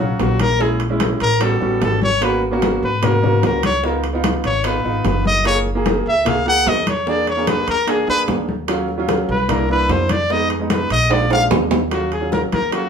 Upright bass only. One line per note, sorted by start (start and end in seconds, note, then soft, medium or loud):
0.00 0.15 A#1 medium
0.20 1.15 A#1 medium
1.21 1.58 A1 medium
1.61 1.80 A1 medium
1.81 2.77 G#1 loud
2.82 3.39 G#2 medium
3.43 4.38 C#2 medium
4.44 4.82 G#1 medium
4.84 5.03 G#1 medium
5.04 6.00 F#1 loud
6.06 6.62 C#2 medium
6.66 7.61 E2 medium
7.68 8.05 E2 medium
8.08 8.27 E2 medium
8.28 9.23 D#2 medium
9.29 9.85 C2 loud
9.89 10.84 F2 medium
10.90 11.47 A#1 loud
11.51 12.46 D#2 loud
12.52 12.89 D#2 medium